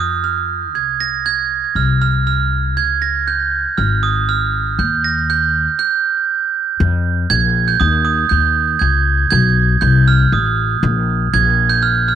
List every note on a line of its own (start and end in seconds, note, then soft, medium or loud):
0.00 0.74 F2 medium
0.00 0.25 D#6 medium
0.24 0.76 F6 medium
0.74 1.62 C2 medium
0.74 1.01 G#6 medium
1.00 1.24 A#6 medium
1.26 1.78 G#6 medium
1.75 2.77 C2 medium
1.75 2.00 F6 medium
2.02 2.26 F6 medium
2.27 2.74 F6 medium
2.77 3.64 C#2 medium
2.77 3.03 G#6 medium
3.02 3.28 A#6 medium
3.27 3.79 G6 medium
3.78 4.80 G#1 medium
3.78 4.04 F6 medium
4.03 4.29 D#6 medium
4.29 4.80 F6 medium
4.79 5.66 D#2 medium
4.79 5.05 G6 medium
5.04 5.30 A#6 medium
5.30 5.78 G6 medium
5.79 6.51 G6 medium
6.80 7.24 F2 loud
7.30 7.74 A#1 loud
7.30 7.69 G#6 loud
7.68 7.81 G6 medium
7.80 8.24 D#2 loud
7.80 8.04 D#6 medium
8.05 8.29 D#6 medium
8.29 8.75 D#2 medium
8.29 8.77 G6 medium
8.79 9.25 C#2 loud
8.79 9.29 G#6 medium
9.30 9.76 B1 loud
9.30 9.83 G#6 loud
9.81 10.26 C2 loud
9.81 10.05 G6 medium
10.08 10.33 F6 medium
10.32 10.76 A1 loud
10.32 10.68 D#6 medium
10.83 11.27 A#1 loud
11.34 12.15 A#1 loud
11.34 11.72 G#6 loud
11.70 11.83 G6 medium
11.83 12.07 F6 medium
12.08 12.15 F6 medium